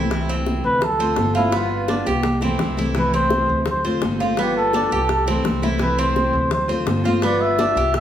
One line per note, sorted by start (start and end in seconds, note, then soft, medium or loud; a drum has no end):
0.00 0.58 C2 medium
0.00 0.11 A3 medium
0.00 0.10 C4 medium
0.00 0.10 E4 medium
0.00 0.28 E4 medium
0.10 0.81 C3 medium
0.10 0.81 E3 medium
0.10 0.80 A3 medium
0.10 0.80 C4 medium
0.10 0.81 E4 medium
0.10 high bongo medium
0.29 0.64 C4 medium
0.29 high conga soft
0.46 high bongo medium
0.46 high conga medium
0.64 1.14 D2 medium
0.64 0.86 B4 loud
0.81 1.36 A4 medium
0.81 muted steel-string acoustic guitar stroke medium
0.81 high bongo medium
0.81 high conga soft
0.81 low conga medium
0.99 1.17 A3 medium
0.99 1.17 C4 medium
0.99 1.17 F4 medium
0.99 1.35 C5 medium
0.99 high conga soft
1.16 2.01 G1 medium
1.16 1.35 D3 soft
1.16 1.35 A3 medium
1.16 1.35 C4 medium
1.16 1.34 F4 medium
1.16 high bongo medium
1.16 low bongo medium
1.16 high conga medium
1.35 1.53 A3 medium
1.35 1.53 C4 medium
1.35 1.58 E4 medium
1.35 1.53 F4 medium
1.35 high conga medium
1.52 2.24 G3 medium
1.52 1.87 B3 medium
1.52 2.25 B3 medium
1.52 2.25 F4 medium
1.52 high bongo medium
1.52 high conga soft
1.56 2.08 F4 medium
1.71 high conga soft
1.88 2.06 D4 medium
1.88 high bongo medium
1.88 high conga loud
2.06 2.56 C2 medium
2.06 2.41 G4 medium
2.06 high bongo soft
2.06 high conga medium
2.23 muted steel-string acoustic guitar stroke medium
2.23 high bongo medium
2.23 high conga medium
2.41 2.59 E3 soft
2.41 2.59 A3 medium
2.41 2.77 C4 medium
2.41 2.60 C4 medium
2.41 2.59 E4 medium
2.41 high bongo soft
2.59 3.43 C2 medium
2.59 2.77 E3 soft
2.59 2.77 A3 soft
2.59 2.77 C4 medium
2.59 2.76 E4 medium
2.59 high bongo medium
2.59 low bongo medium
2.59 low conga medium
2.77 2.95 E3 medium
2.77 2.95 A3 medium
2.77 2.95 C4 medium
2.77 2.95 E4 medium
2.77 3.13 E4 medium
2.77 high bongo soft
2.77 low conga medium
2.95 3.66 C3 medium
2.95 3.66 E3 medium
2.95 3.66 A3 medium
2.95 3.66 C4 medium
2.95 3.67 E4 medium
2.95 high bongo medium
2.95 high conga soft
2.99 3.14 B4 medium
3.14 3.48 C4 medium
3.14 3.64 C5 medium
3.14 high conga soft
3.30 high bongo medium
3.30 high conga medium
3.49 3.99 D2 loud
3.66 muted steel-string acoustic guitar stroke medium
3.66 high bongo medium
3.66 high conga soft
3.66 low conga medium
3.71 3.86 C5 medium
3.85 4.03 A3 medium
3.85 4.03 C4 medium
3.85 4.02 F4 medium
3.85 4.19 C5 medium
3.85 high conga soft
4.02 4.86 G1 medium
4.02 4.20 D3 soft
4.02 4.20 A3 medium
4.02 4.20 C4 medium
4.02 4.19 F4 medium
4.02 high bongo medium
4.02 low bongo medium
4.02 high conga medium
4.20 4.37 A3 medium
4.20 4.38 C4 medium
4.20 4.38 F4 medium
4.20 high conga medium
4.37 5.08 G3 medium
4.37 4.73 B3 medium
4.37 5.09 B3 medium
4.37 5.10 F4 medium
4.37 4.56 G4 medium
4.37 high bongo medium
4.37 high conga soft
4.56 5.06 A4 medium
4.56 high conga soft
4.73 4.91 D4 medium
4.73 high bongo soft
4.73 high conga medium
4.91 5.41 C2 medium
4.91 5.26 G4 medium
4.91 high bongo soft
4.91 high conga soft
5.09 5.27 A4 medium
5.09 muted steel-string acoustic guitar stroke medium
5.09 high bongo medium
5.09 high conga soft
5.26 5.44 E3 medium
5.26 5.44 A3 medium
5.26 5.45 C4 medium
5.26 5.62 C4 medium
5.26 5.44 E4 medium
5.26 high bongo soft
5.26 high conga soft
5.44 6.28 C2 medium
5.44 5.62 E3 soft
5.44 5.62 A3 medium
5.44 5.62 C4 soft
5.44 5.61 E4 medium
5.44 high bongo medium
5.44 low bongo medium
5.44 high conga medium
5.62 5.78 E3 medium
5.62 5.79 A3 medium
5.62 5.80 C4 medium
5.62 5.80 E4 medium
5.62 5.98 E4 medium
5.62 high bongo soft
5.62 high conga medium
5.78 6.50 C3 medium
5.78 6.50 E3 medium
5.78 6.50 A3 medium
5.78 6.51 C4 medium
5.78 6.52 E4 medium
5.78 6.01 B4 medium
5.78 high bongo medium
5.78 high conga soft
5.99 6.33 C4 medium
5.99 6.52 C5 medium
5.99 high conga soft
6.16 high bongo medium
6.16 high conga medium
6.33 6.83 D2 medium
6.51 6.69 C5 medium
6.51 muted steel-string acoustic guitar stroke medium
6.51 high bongo medium
6.51 high conga soft
6.51 low conga medium
6.68 6.86 A3 medium
6.68 6.86 C4 medium
6.68 6.86 F4 medium
6.68 7.04 C5 medium
6.68 high conga soft
6.68 low conga medium
6.86 7.71 G1 medium
6.86 7.04 D3 medium
6.86 7.04 A3 soft
6.86 7.04 C4 medium
6.86 7.03 F4 soft
6.86 high bongo medium
6.86 low bongo medium
6.86 high conga medium
7.04 7.21 A3 medium
7.04 7.22 C4 medium
7.04 7.22 F4 medium
7.04 7.23 F4 medium
7.04 high conga medium
7.22 7.93 G3 medium
7.22 7.58 B3 medium
7.22 7.94 B3 medium
7.22 7.95 F4 medium
7.22 7.43 D5 medium
7.22 high bongo medium
7.22 high conga soft
7.41 7.95 E5 medium
7.41 high conga soft
7.59 7.76 D4 medium
7.59 high bongo medium
7.59 high conga loud
7.75 8.00 C2 medium
7.75 8.00 G4 medium
7.75 high bongo soft
7.75 high conga soft
7.94 8.00 E5 medium
7.94 muted steel-string acoustic guitar stroke medium
7.94 high bongo medium
7.94 high conga soft